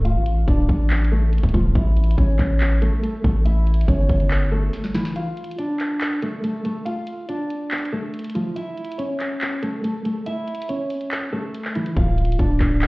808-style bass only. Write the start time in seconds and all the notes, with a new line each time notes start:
Already playing: C#1
0.16 A1
0.48 D1
0.69 A1
1.43 D1
1.54 D1
1.75 A1
2.18 A1
2.39 A1
3.24 A1
3.88 G1
4.09 G1
11.97 D1
12.39 D1
12.60 D1